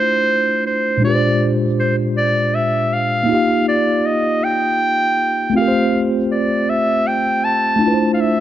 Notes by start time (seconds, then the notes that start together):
Already playing: A3 D4 E4 F4 C5
0.66 C5
0.97 A#2 G#3
1.02 D4 F4 D5
1.07 G4 B4
1.15 C5
1.80 C5
2.17 D5
2.55 E5
2.93 F5
3.23 A#3 D#4
3.29 F4 G4
3.35 F5
3.68 D5
4.06 D#5
4.44 G5
5.50 A3 C4
5.56 F4 G4 F5
5.61 A#4
5.68 C5
6.31 D5
6.69 E5
7.07 G5
7.44 A5
7.76 A3 D4
7.82 E4 F4
7.88 B4
7.94 C5
8.14 F5
8.21 E5